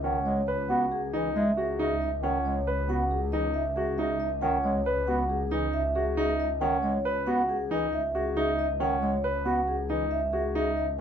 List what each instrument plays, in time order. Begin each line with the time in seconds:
Already playing: double bass section C#2, vibraphone D#5
0.03 bass clarinet D#3, grand piano C#4, vibraphone F#5
0.25 bass clarinet G#3, vibraphone C#5
0.47 vibraphone B4, grand piano B4
0.69 bass clarinet B3, grand piano F#4, vibraphone F#5
0.92 vibraphone G#4
1.13 bass clarinet E3, grand piano D#4, vibraphone D#5
1.35 bass clarinet G#3, vibraphone E5
1.57 grand piano F#4, vibraphone G#4
1.79 bass clarinet C#3, grand piano D#4, vibraphone E5
2.02 vibraphone D#5
2.23 bass clarinet D#3, grand piano C#4, vibraphone F#5
2.45 bass clarinet G#3, vibraphone C#5
2.67 vibraphone B4, grand piano B4
2.88 bass clarinet B3, grand piano F#4, vibraphone F#5
3.11 vibraphone G#4
3.32 bass clarinet E3, grand piano D#4, vibraphone D#5
3.54 vibraphone E5
3.76 grand piano F#4, vibraphone G#4
3.98 bass clarinet C#3, grand piano D#4, vibraphone E5
4.20 vibraphone D#5
4.41 bass clarinet D#3, grand piano C#4, vibraphone F#5
4.64 bass clarinet G#3, vibraphone C#5
4.86 vibraphone B4, grand piano B4
5.07 bass clarinet B3, grand piano F#4, vibraphone F#5
5.29 vibraphone G#4
5.51 bass clarinet E3, grand piano D#4, vibraphone D#5
5.73 vibraphone E5
5.95 grand piano F#4, vibraphone G#4
6.17 bass clarinet C#3, grand piano D#4, vibraphone E5
6.40 vibraphone D#5
6.61 bass clarinet D#3, grand piano C#4, vibraphone F#5
6.83 bass clarinet G#3, vibraphone C#5
7.05 grand piano B4, vibraphone B4
7.27 bass clarinet B3, grand piano F#4, vibraphone F#5
7.49 vibraphone G#4
7.70 bass clarinet E3, grand piano D#4, vibraphone D#5
7.93 vibraphone E5
8.15 grand piano F#4, vibraphone G#4
8.36 bass clarinet C#3, grand piano D#4, vibraphone E5
8.59 vibraphone D#5
8.80 bass clarinet D#3, grand piano C#4, vibraphone F#5
9.02 bass clarinet G#3, vibraphone C#5
9.24 vibraphone B4, grand piano B4
9.45 bass clarinet B3, grand piano F#4, vibraphone F#5
9.68 vibraphone G#4
9.89 bass clarinet E3, grand piano D#4, vibraphone D#5
10.11 vibraphone E5
10.33 grand piano F#4, vibraphone G#4
10.55 bass clarinet C#3, grand piano D#4, vibraphone E5
10.77 vibraphone D#5